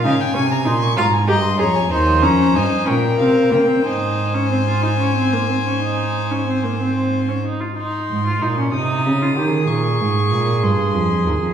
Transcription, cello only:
\new Staff \with { instrumentName = "Cello" } { \clef bass \time 12/8 \key aes \major \tempo 4. = 63 des8 c8 bes,8 aes,8 g,8 f,8 ees,8 f,8 g,8 bes,8 c8 des8 | aes,1~ aes,4. r8 | r8 aes,8 bes,8 c8 des8 ees8 bes,8 aes,8 bes,8 g,8 f,8 ees,16 f,16 | }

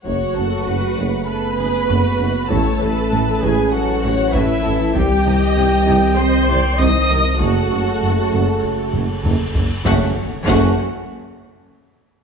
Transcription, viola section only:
\new Staff \with { instrumentName = "Viola section" } { \time 4/4 \key fis \minor \tempo 4 = 98 fis'2 b'2 | a'4. gis'8 fis'4 e'4 | g'2 c''4 ees''4 | fis'2. r4 |
fis'8 r8 fis'8 r2 r8 | }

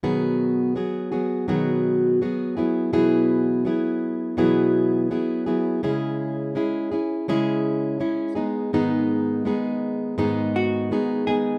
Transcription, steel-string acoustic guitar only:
\new Staff \with { instrumentName = "Steel-string acoustic guitar" } { \time 4/4 \key b \major \tempo 4 = 83 <b, dis fis b fis' gis'>4 <fis b fis' gis'>8 <fis b fis' gis'>8 <b, dis fis b fis' gis'>4 <fis b fis' gis'>8 <fis b e' gis'>8 | <b, e fis b e' gis'>4 <fis b e' gis'>4 <b, e fis b e' gis'>4 <fis b e' gis'>8 <fis b e' gis'>8 | <cis gis cis' e' gis'>4 <gis cis' e' gis'>8 <cis' e' gis'>8 <cis gis cis' e' gis'>4 <gis cis' e' gis'>8 <gis b dis' gis'>8 | <gis, dis gis b dis' gis'>4 <gis b dis' gis'>4 <gis, dis gis b dis' gis'>4 <gis b dis' gis'>8 <gis b dis' gis'>8 | }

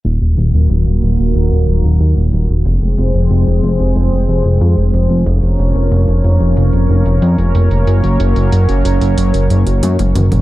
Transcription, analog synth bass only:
\new Staff \with { instrumentName = "Analog synth bass" } { \clef bass \time 4/4 \key ees \dorian \tempo 4 = 92 ees,,16 ees,,16 ees,,16 ees,,16 ees,,16 ees,,16 ees,,16 ees,,16 ees,,16 ees,,16 ees,,16 ees,,16 ees,16 ees,,16 ees,,16 ees,,16 | f,,16 f,,16 f,,16 f,,16 f,,16 f,,16 f,,16 f,,16 f,,16 f,,16 f,,16 f,,16 f,16 f,,16 f,,16 f,,16 | f,,16 f,,16 f,,16 f,,16 f,,16 f,,16 f,,16 f,,16 f,,16 f,,16 f,,16 f,,16 f,16 f,,16 f,,16 f,,16 | ges,,16 ges,,16 ges,,16 ges,,16 ges,,16 ges,,16 ges,,16 ges,,16 ges,,16 ges,,16 ges,,16 ges,,16 ges,16 ges,,16 ges,,16 ges,,16 | }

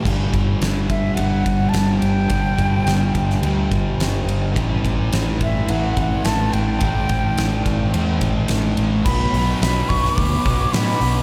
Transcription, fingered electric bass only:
\new Staff \with { instrumentName = "Fingered electric bass" } { \clef bass \time 4/4 \key g \major \tempo 4 = 107 g,,8 g,,8 g,,4 g,,8 g,,8 g,,8 g,,8 | g,,8 g,,8 g,,8 g,,8 d,8 g,,8 g,,8 g,,8 | a,,8 a,,8 a,,4 a,,8 a,,8 a,,8 a,,8 | a,,8 a,,8 a,,8 a,,8 e,8 a,,8 a,,8 a,,8 |
b,,8 b,,8 b,,8 b,,8 d,8 b,,8 a,8 b,,8 | }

